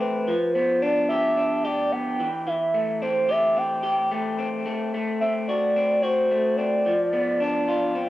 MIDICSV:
0, 0, Header, 1, 3, 480
1, 0, Start_track
1, 0, Key_signature, 0, "major"
1, 0, Tempo, 548948
1, 236, Time_signature, 4, 2, 24, 8
1, 7075, End_track
2, 0, Start_track
2, 0, Title_t, "Soft synth lead"
2, 0, Program_c, 0, 80
2, 0, Note_on_c, 0, 71, 89
2, 445, Note_off_c, 0, 71, 0
2, 471, Note_on_c, 0, 72, 93
2, 714, Note_on_c, 0, 74, 101
2, 727, Note_off_c, 0, 72, 0
2, 948, Note_off_c, 0, 74, 0
2, 954, Note_on_c, 0, 76, 102
2, 1434, Note_on_c, 0, 74, 96
2, 1447, Note_off_c, 0, 76, 0
2, 1676, Note_on_c, 0, 79, 116
2, 1689, Note_off_c, 0, 74, 0
2, 2159, Note_on_c, 0, 76, 103
2, 2172, Note_off_c, 0, 79, 0
2, 2638, Note_off_c, 0, 76, 0
2, 2643, Note_on_c, 0, 72, 102
2, 2889, Note_on_c, 0, 76, 107
2, 2902, Note_off_c, 0, 72, 0
2, 3127, Note_on_c, 0, 79, 107
2, 3140, Note_off_c, 0, 76, 0
2, 3842, Note_off_c, 0, 79, 0
2, 4550, Note_on_c, 0, 76, 108
2, 4659, Note_off_c, 0, 76, 0
2, 4793, Note_on_c, 0, 74, 110
2, 5264, Note_on_c, 0, 72, 99
2, 5277, Note_off_c, 0, 74, 0
2, 5737, Note_on_c, 0, 74, 103
2, 5750, Note_off_c, 0, 72, 0
2, 7075, Note_off_c, 0, 74, 0
2, 7075, End_track
3, 0, Start_track
3, 0, Title_t, "Clean electric guitar"
3, 0, Program_c, 1, 27
3, 0, Note_on_c, 1, 52, 89
3, 0, Note_on_c, 1, 57, 58
3, 0, Note_on_c, 1, 60, 62
3, 0, Note_on_c, 1, 67, 67
3, 237, Note_off_c, 1, 52, 0
3, 243, Note_on_c, 1, 53, 79
3, 284, Note_off_c, 1, 57, 0
3, 284, Note_off_c, 1, 60, 0
3, 481, Note_on_c, 1, 59, 65
3, 719, Note_on_c, 1, 62, 57
3, 958, Note_off_c, 1, 67, 0
3, 962, Note_on_c, 1, 67, 68
3, 1190, Note_off_c, 1, 62, 0
3, 1200, Note_on_c, 1, 62, 56
3, 1438, Note_off_c, 1, 67, 0
3, 1441, Note_on_c, 1, 67, 70
3, 1673, Note_off_c, 1, 59, 0
3, 1683, Note_on_c, 1, 59, 66
3, 1919, Note_off_c, 1, 53, 0
3, 1922, Note_on_c, 1, 52, 86
3, 1967, Note_off_c, 1, 62, 0
3, 1968, Note_off_c, 1, 59, 0
3, 2152, Note_off_c, 1, 52, 0
3, 2162, Note_on_c, 1, 52, 93
3, 2396, Note_on_c, 1, 57, 67
3, 2422, Note_off_c, 1, 67, 0
3, 2639, Note_on_c, 1, 60, 63
3, 2875, Note_on_c, 1, 67, 67
3, 3115, Note_off_c, 1, 60, 0
3, 3118, Note_on_c, 1, 60, 62
3, 3340, Note_off_c, 1, 67, 0
3, 3351, Note_on_c, 1, 67, 71
3, 3592, Note_off_c, 1, 57, 0
3, 3595, Note_on_c, 1, 57, 60
3, 3829, Note_off_c, 1, 60, 0
3, 3833, Note_on_c, 1, 60, 65
3, 4070, Note_off_c, 1, 57, 0
3, 4073, Note_on_c, 1, 57, 90
3, 4080, Note_off_c, 1, 52, 0
3, 4122, Note_off_c, 1, 67, 0
3, 4310, Note_off_c, 1, 57, 0
3, 4320, Note_on_c, 1, 57, 64
3, 4556, Note_off_c, 1, 60, 0
3, 4560, Note_on_c, 1, 60, 63
3, 4802, Note_on_c, 1, 66, 66
3, 5030, Note_off_c, 1, 60, 0
3, 5041, Note_on_c, 1, 60, 62
3, 5264, Note_off_c, 1, 66, 0
3, 5274, Note_on_c, 1, 66, 69
3, 5509, Note_off_c, 1, 57, 0
3, 5519, Note_on_c, 1, 57, 61
3, 5744, Note_off_c, 1, 60, 0
3, 5754, Note_on_c, 1, 60, 64
3, 6000, Note_on_c, 1, 53, 86
3, 6043, Note_off_c, 1, 60, 0
3, 6043, Note_off_c, 1, 66, 0
3, 6046, Note_off_c, 1, 57, 0
3, 6232, Note_on_c, 1, 59, 67
3, 6472, Note_on_c, 1, 62, 65
3, 6719, Note_on_c, 1, 65, 67
3, 6950, Note_off_c, 1, 62, 0
3, 6954, Note_on_c, 1, 60, 66
3, 7075, Note_off_c, 1, 53, 0
3, 7075, Note_off_c, 1, 59, 0
3, 7075, Note_off_c, 1, 60, 0
3, 7075, Note_off_c, 1, 65, 0
3, 7075, End_track
0, 0, End_of_file